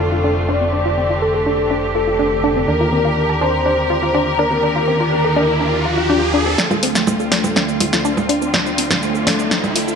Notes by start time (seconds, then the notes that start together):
Already playing: F1 D3 A3 C4 D4 F4 A4
0.12 F4
0.24 D4
0.49 D4 D5
0.61 C4
0.73 D4 G4
0.86 F4
0.98 C4
1.10 F4
1.22 A4
1.34 A4
1.46 D4
1.71 D4
1.95 F4 A4
2.07 F4
2.19 D4
2.44 D4
2.56 C4
2.68 D#2 D4 A#4, riser
2.81 F4
2.93 C4
3.05 F4
3.29 A4
3.41 D4 C5
3.66 D4
3.90 F4
4.03 F4
4.14 D4
4.39 D4 A#4
4.51 C4
4.63 D4
4.76 F4
4.88 C4
5.00 F4
5.12 A#4
5.24 A4
5.36 D4
5.61 D4
5.85 F4
5.97 F4
6.10 D4
6.34 D4
6.46 C4
6.58 D2 D3 A3 C4 D4 F4 A4, snare, riser, shaker
6.71 F4, low conga, shaker
6.83 C4, open hi-hat
6.95 F4, snare, shaker
7.07 low conga, shaker
7.20 A4, shaker
7.31 A3 D4 A4, snare, open hi-hat
7.44 low conga, shaker
7.56 D4, snare, shaker
7.69 shaker
7.80 F4, open hi-hat, low conga
7.93 F4, snare, shaker
8.05 D4, shaker
8.17 low conga, shaker
8.29 D4 D5, open hi-hat
8.42 C4, shaker
8.54 D4, snare, low conga, shaker
8.66 F4, shaker
8.78 C4, open hi-hat
8.90 F4, snare, low conga, shaker
9.02 A3 A4, shaker
9.15 A4, shaker
9.27 D4, snare, open hi-hat, low conga
9.39 shaker
9.51 D4, snare, shaker
9.64 low conga, shaker
9.76 A3 F4 A4, open hi-hat
9.88 F4, shaker